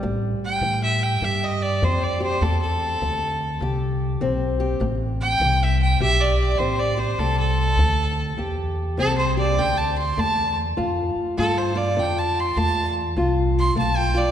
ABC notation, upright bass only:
X:1
M:4/4
L:1/8
Q:"Swing" 1/4=100
K:Am
V:1 name="Upright bass" clef=bass
A,,, z A,,2 G,,2 F,,2 | E,,2 D,,2 C,,2 B,,,2 | A,,,2 C,,2 B,,,2 A,,,2 | C,,2 D,,2 E,,2 C,,2 |
D,,2 E,,2 F,, z G,,2 | F,,2 E,,2 C,,2 B,,,2 |]